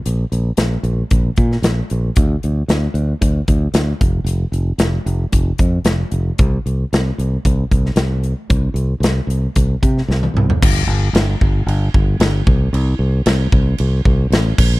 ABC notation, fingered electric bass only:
X:1
M:4/4
L:1/8
Q:1/4=114
K:Cmix
V:1 name="Fingered electric bass" clef=bass
B,,, B,,, B,,, B,,, B,,, B,, B,,, B,,, | D,, D,, D,, D,, D,, D,, D,, F,,, | F,,, F,,, F,,, F,,, F,,, F,, F,,, F,,, | C,, C,, C,, C,, C,, C,, C,,2 |
C,, C,, C,, C,, C,, C, C,, C,, | G,,, G,,, G,,, G,,, G,,, G,,, G,,, C,, | C,, C,, C,, C,, C,, C,, A,,, B,,, |]